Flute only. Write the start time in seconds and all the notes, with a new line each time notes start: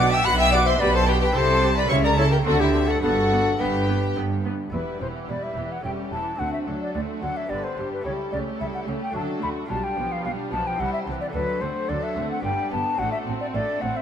Already playing: F#5
0.12 G5
0.25 B5
0.38 G5
0.53 F#5
0.66 E5
0.80 D5
0.94 C5
1.08 B4
1.21 B4
1.36 C5
1.77 D5
1.90 E5
2.04 D5
2.18 C#5
2.31 A#4
2.46 A4
2.60 G4
2.88 A4
3.02 A4
3.60 B4
4.74 B4
5.01 C5
5.29 D5
5.43 E5
5.72 F#5
5.85 G5
6.12 A5
6.39 F#5
6.53 E5
6.81 D5
6.94 D5
7.22 F#5
7.37 E5
7.50 D5
7.64 C5
7.93 B4
8.05 C#5
8.32 D5
8.60 E5
8.74 F#5
9.03 G5
9.16 A5
9.43 B5
9.70 A5
9.84 G5
10.12 F5
10.25 F5
10.52 A5
10.67 G5
10.80 F#5
10.93 E5
11.21 D5
11.34 B4
11.61 C5
11.89 D5
12.03 E5
12.31 F#5
12.43 G5
12.72 A5
12.99 F#5
13.12 E5
13.41 D5
13.54 D5
13.81 F#5
13.96 E5